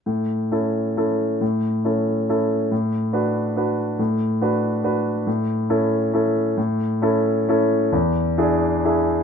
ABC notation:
X:1
M:3/4
L:1/8
Q:1/4=136
K:A
V:1 name="Grand piano"
A,,2 [CEA]2 [CEA]2 | A,,2 [CEA]2 [CEA]2 | A,,2 [DFB]2 [DFB]2 | A,,2 [DFB]2 [DFB]2 |
A,,2 [CEA]2 [CEA]2 | A,,2 [CEA]2 [CEA]2 | E,,2 [DEG]2 [DEG]2 |]